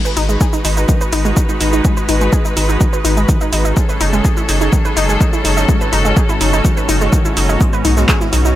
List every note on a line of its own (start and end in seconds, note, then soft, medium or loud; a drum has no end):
0.00 8.56 G#2 medium
0.00 3.73 G#3 medium
0.00 3.73 D#4 medium
0.00 3.73 F#4 medium
0.00 3.73 B4 medium
0.05 0.09 B4 medium
0.05 shaker soft
0.17 0.37 G#1 loud
0.17 0.21 D#4 loud
0.17 open hi-hat loud
0.17 shaker medium
0.29 0.36 G#3 medium
0.29 shaker soft
0.41 0.52 G#4 medium
0.41 kick loud
0.41 shaker medium
0.53 0.57 D#4 medium
0.53 shaker soft
0.65 0.85 G#1 loud
0.65 0.72 D#4 medium
0.65 open hi-hat loud
0.65 shaker medium
0.77 0.84 D#4 medium
0.77 shaker soft
0.89 0.93 D#3 medium
0.89 kick loud
0.89 shaker medium
1.01 1.05 B4 medium
1.01 shaker soft
1.13 1.33 G#1 loud
1.13 1.21 D#4 loud
1.13 open hi-hat loud
1.13 shaker medium
1.25 1.29 G#3 medium
1.25 shaker soft
1.37 1.48 D#3 medium
1.37 kick loud
1.37 shaker medium
1.49 1.53 D#4 medium
1.49 shaker soft
1.61 1.81 G#1 medium
1.61 1.69 D#4 medium
1.61 open hi-hat loud
1.61 shaker medium
1.73 1.80 D#4 medium
1.73 shaker soft
1.85 1.92 G#3 medium
1.85 kick loud
1.85 shaker medium
1.97 2.01 B4 medium
1.97 shaker soft
2.09 2.29 G#1 loud
2.09 2.13 D#4 loud
2.09 open hi-hat loud
2.09 shaker medium
2.21 2.28 G#3 medium
2.21 shaker soft
2.33 2.44 G#4 medium
2.33 kick loud
2.33 shaker medium
2.45 2.49 D#4 medium
2.45 shaker soft
2.57 2.77 G#1 loud
2.57 2.64 D#4 medium
2.57 open hi-hat loud
2.57 shaker medium
2.69 2.76 D#4 medium
2.69 shaker soft
2.81 2.85 D#3 medium
2.81 kick loud
2.81 shaker medium
2.93 2.97 B4 medium
2.93 shaker soft
3.05 3.25 G#1 loud
3.05 3.12 D#4 loud
3.05 open hi-hat loud
3.05 shaker medium
3.17 3.21 G#3 medium
3.17 shaker soft
3.29 3.40 D#3 medium
3.29 kick loud
3.29 shaker medium
3.41 3.45 D#4 medium
3.41 shaker soft
3.53 3.73 G#1 medium
3.53 3.60 D#4 medium
3.53 open hi-hat loud
3.53 shaker medium
3.65 3.72 D#4 medium
3.65 shaker soft
3.77 7.57 F#3 medium
3.77 3.84 G#3 medium
3.77 8.56 C#4 medium
3.77 5.67 G#4 medium
3.77 7.57 A4 medium
3.77 kick loud
3.77 shaker medium
3.89 3.93 B4 medium
3.89 shaker soft
4.01 4.21 F#1 loud
4.01 4.05 D#4 loud
4.01 open hi-hat loud
4.01 shaker medium
4.13 4.20 G#3 medium
4.13 shaker soft
4.25 4.36 G#4 medium
4.25 kick loud
4.25 shaker medium
4.37 4.41 E4 medium
4.37 shaker soft
4.49 4.69 F#1 loud
4.49 4.57 D#4 medium
4.49 open hi-hat loud
4.49 shaker medium
4.61 4.68 D#4 medium
4.61 shaker soft
4.73 4.77 D#3 medium
4.73 kick loud
4.73 shaker medium
4.85 4.89 B4 medium
4.85 shaker soft
4.97 5.17 F#1 medium
4.97 5.04 D#4 loud
4.97 open hi-hat loud
4.97 shaker medium
5.09 5.13 G#3 medium
5.09 shaker soft
5.21 5.32 D#3 medium
5.21 kick loud
5.21 shaker medium
5.33 5.37 E4 medium
5.33 shaker soft
5.45 5.65 F#1 medium
5.45 5.52 D#4 medium
5.45 open hi-hat loud
5.45 shaker medium
5.57 5.64 D#4 medium
5.57 shaker soft
5.69 5.76 G#3 medium
5.69 8.56 F#4 medium
5.69 kick loud
5.69 shaker medium
5.81 5.85 B4 medium
5.81 shaker soft
5.93 6.13 F#1 loud
5.93 5.97 D#4 loud
5.93 open hi-hat loud
5.93 shaker medium
6.05 6.12 G#3 medium
6.05 shaker soft
6.17 6.28 G#4 medium
6.17 kick loud
6.17 shaker medium
6.29 6.33 E4 medium
6.29 shaker soft
6.41 6.61 F#1 loud
6.41 6.49 D#4 medium
6.41 open hi-hat loud
6.41 shaker medium
6.53 6.60 D#4 medium
6.53 shaker soft
6.65 6.69 D#3 medium
6.65 kick loud
6.65 shaker medium
6.77 6.82 B4 medium
6.77 shaker soft
6.89 7.09 F#1 loud
6.89 6.97 D#4 loud
6.89 open hi-hat loud
6.89 shaker medium
7.01 7.06 G#3 medium
7.01 shaker soft
7.13 7.24 D#3 medium
7.13 kick loud
7.13 shaker medium
7.25 7.29 E4 medium
7.25 shaker soft
7.37 7.57 F#1 medium
7.37 7.45 D#4 medium
7.37 open hi-hat loud
7.37 shaker medium
7.49 7.56 D#4 medium
7.49 shaker soft
7.60 7.69 G#3 medium
7.60 8.56 B3 medium
7.60 kick loud
7.60 shaker medium
7.73 7.77 B4 medium
7.73 shaker soft
7.85 8.05 B1 loud
7.85 7.89 D#4 loud
7.85 snare medium
7.85 open hi-hat loud
7.85 shaker medium
7.97 8.04 G#3 medium
7.97 snare soft
7.97 shaker soft
8.09 8.20 G#4 medium
8.09 kick loud
8.09 snare loud
8.09 clap loud
8.09 shaker medium
8.20 8.25 E4 medium
8.20 snare soft
8.20 shaker soft
8.33 8.53 B1 loud
8.33 8.41 D#4 medium
8.33 open hi-hat loud
8.33 shaker medium
8.45 8.52 D#4 medium
8.45 snare soft
8.45 shaker soft